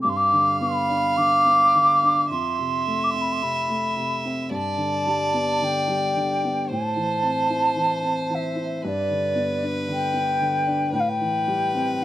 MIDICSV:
0, 0, Header, 1, 4, 480
1, 0, Start_track
1, 0, Tempo, 1123596
1, 15, Time_signature, 4, 2, 24, 8
1, 1455, Tempo, 1094891
1, 2415, Tempo, 1067616
1, 5315, End_track
2, 0, Start_track
2, 0, Title_t, "Flute"
2, 0, Program_c, 0, 73
2, 9, Note_on_c, 0, 86, 78
2, 40, Note_on_c, 0, 84, 72
2, 46, Note_off_c, 0, 86, 0
2, 70, Note_on_c, 0, 86, 83
2, 77, Note_off_c, 0, 84, 0
2, 252, Note_off_c, 0, 86, 0
2, 260, Note_on_c, 0, 83, 74
2, 499, Note_on_c, 0, 86, 96
2, 505, Note_off_c, 0, 83, 0
2, 982, Note_off_c, 0, 86, 0
2, 986, Note_on_c, 0, 84, 85
2, 1298, Note_on_c, 0, 86, 68
2, 1304, Note_off_c, 0, 84, 0
2, 1327, Note_on_c, 0, 84, 72
2, 1334, Note_off_c, 0, 86, 0
2, 1373, Note_on_c, 0, 83, 71
2, 1379, Note_off_c, 0, 84, 0
2, 1418, Note_on_c, 0, 84, 69
2, 1424, Note_off_c, 0, 83, 0
2, 1463, Note_on_c, 0, 83, 73
2, 1470, Note_off_c, 0, 84, 0
2, 1824, Note_off_c, 0, 83, 0
2, 1946, Note_on_c, 0, 81, 76
2, 2386, Note_off_c, 0, 81, 0
2, 2386, Note_on_c, 0, 81, 64
2, 2436, Note_on_c, 0, 79, 84
2, 2443, Note_off_c, 0, 81, 0
2, 2913, Note_off_c, 0, 79, 0
2, 2919, Note_on_c, 0, 81, 93
2, 3651, Note_on_c, 0, 76, 74
2, 3658, Note_off_c, 0, 81, 0
2, 3848, Note_off_c, 0, 76, 0
2, 3848, Note_on_c, 0, 76, 58
2, 3889, Note_on_c, 0, 74, 82
2, 3896, Note_off_c, 0, 76, 0
2, 4238, Note_off_c, 0, 74, 0
2, 4362, Note_on_c, 0, 79, 90
2, 4810, Note_off_c, 0, 79, 0
2, 4818, Note_on_c, 0, 79, 86
2, 4844, Note_on_c, 0, 77, 72
2, 4851, Note_off_c, 0, 79, 0
2, 4884, Note_on_c, 0, 79, 88
2, 4891, Note_off_c, 0, 77, 0
2, 5315, Note_off_c, 0, 79, 0
2, 5315, End_track
3, 0, Start_track
3, 0, Title_t, "Violin"
3, 0, Program_c, 1, 40
3, 22, Note_on_c, 1, 77, 98
3, 967, Note_off_c, 1, 77, 0
3, 980, Note_on_c, 1, 76, 92
3, 1930, Note_on_c, 1, 74, 97
3, 1937, Note_off_c, 1, 76, 0
3, 2902, Note_on_c, 1, 72, 87
3, 2909, Note_off_c, 1, 74, 0
3, 3866, Note_on_c, 1, 71, 99
3, 3872, Note_off_c, 1, 72, 0
3, 4803, Note_off_c, 1, 71, 0
3, 4806, Note_on_c, 1, 71, 92
3, 5315, Note_off_c, 1, 71, 0
3, 5315, End_track
4, 0, Start_track
4, 0, Title_t, "Upright piano"
4, 0, Program_c, 2, 0
4, 0, Control_c, 2, 64, 127
4, 18, Note_on_c, 2, 43, 57
4, 20, Control_c, 2, 64, 0
4, 90, Control_c, 2, 64, 127
4, 140, Note_on_c, 2, 50, 38
4, 261, Note_on_c, 2, 59, 48
4, 380, Note_on_c, 2, 62, 44
4, 495, Note_off_c, 2, 50, 0
4, 501, Note_on_c, 2, 50, 39
4, 618, Note_off_c, 2, 59, 0
4, 624, Note_on_c, 2, 59, 39
4, 742, Note_off_c, 2, 50, 0
4, 749, Note_on_c, 2, 50, 41
4, 861, Note_off_c, 2, 62, 0
4, 867, Note_on_c, 2, 62, 44
4, 965, Note_off_c, 2, 43, 0
4, 973, Note_off_c, 2, 59, 0
4, 978, Note_off_c, 2, 50, 0
4, 981, Note_off_c, 2, 62, 0
4, 985, Note_on_c, 2, 41, 46
4, 986, Control_c, 2, 64, 0
4, 1067, Control_c, 2, 64, 127
4, 1106, Note_on_c, 2, 48, 45
4, 1224, Note_on_c, 2, 57, 41
4, 1341, Note_on_c, 2, 60, 42
4, 1456, Note_off_c, 2, 48, 0
4, 1462, Note_on_c, 2, 48, 50
4, 1573, Note_off_c, 2, 57, 0
4, 1579, Note_on_c, 2, 57, 45
4, 1694, Note_off_c, 2, 48, 0
4, 1701, Note_on_c, 2, 48, 39
4, 1819, Note_off_c, 2, 60, 0
4, 1825, Note_on_c, 2, 60, 46
4, 1921, Note_off_c, 2, 41, 0
4, 1927, Note_off_c, 2, 57, 0
4, 1932, Note_off_c, 2, 48, 0
4, 1937, Note_on_c, 2, 43, 57
4, 1938, Note_off_c, 2, 60, 0
4, 1942, Control_c, 2, 64, 0
4, 2016, Control_c, 2, 64, 127
4, 2055, Note_on_c, 2, 50, 43
4, 2181, Note_on_c, 2, 55, 50
4, 2302, Note_on_c, 2, 59, 45
4, 2414, Note_off_c, 2, 50, 0
4, 2421, Note_on_c, 2, 50, 47
4, 2537, Note_off_c, 2, 55, 0
4, 2544, Note_on_c, 2, 55, 44
4, 2662, Note_off_c, 2, 50, 0
4, 2669, Note_on_c, 2, 50, 43
4, 2790, Note_off_c, 2, 59, 0
4, 2796, Note_on_c, 2, 59, 42
4, 2885, Note_off_c, 2, 43, 0
4, 2895, Note_off_c, 2, 55, 0
4, 2900, Note_off_c, 2, 50, 0
4, 2907, Note_off_c, 2, 59, 0
4, 2910, Control_c, 2, 64, 0
4, 2914, Note_on_c, 2, 45, 55
4, 2982, Control_c, 2, 64, 127
4, 3028, Note_on_c, 2, 52, 47
4, 3151, Note_on_c, 2, 60, 43
4, 3269, Note_on_c, 2, 64, 47
4, 3381, Note_off_c, 2, 52, 0
4, 3388, Note_on_c, 2, 52, 53
4, 3500, Note_off_c, 2, 60, 0
4, 3507, Note_on_c, 2, 60, 43
4, 3622, Note_off_c, 2, 52, 0
4, 3629, Note_on_c, 2, 52, 42
4, 3739, Note_off_c, 2, 64, 0
4, 3745, Note_on_c, 2, 64, 46
4, 3852, Note_off_c, 2, 45, 0
4, 3855, Note_off_c, 2, 60, 0
4, 3859, Note_off_c, 2, 52, 0
4, 3861, Note_off_c, 2, 64, 0
4, 3871, Control_c, 2, 64, 0
4, 3874, Note_on_c, 2, 43, 64
4, 3948, Control_c, 2, 64, 127
4, 3991, Note_on_c, 2, 50, 42
4, 4106, Note_on_c, 2, 59, 51
4, 4226, Note_on_c, 2, 62, 52
4, 4337, Note_off_c, 2, 50, 0
4, 4343, Note_on_c, 2, 50, 48
4, 4450, Note_off_c, 2, 59, 0
4, 4457, Note_on_c, 2, 59, 44
4, 4570, Note_off_c, 2, 50, 0
4, 4577, Note_on_c, 2, 50, 45
4, 4690, Note_off_c, 2, 62, 0
4, 4697, Note_on_c, 2, 62, 52
4, 4805, Note_off_c, 2, 43, 0
4, 4806, Note_off_c, 2, 59, 0
4, 4810, Note_off_c, 2, 50, 0
4, 4810, Note_on_c, 2, 45, 55
4, 4814, Note_off_c, 2, 62, 0
4, 4824, Control_c, 2, 64, 0
4, 4890, Control_c, 2, 64, 127
4, 4936, Note_on_c, 2, 52, 46
4, 5059, Note_on_c, 2, 55, 52
4, 5180, Note_on_c, 2, 60, 53
4, 5294, Note_off_c, 2, 52, 0
4, 5301, Note_on_c, 2, 52, 50
4, 5315, Note_off_c, 2, 45, 0
4, 5315, Note_off_c, 2, 52, 0
4, 5315, Note_off_c, 2, 55, 0
4, 5315, Note_off_c, 2, 60, 0
4, 5315, End_track
0, 0, End_of_file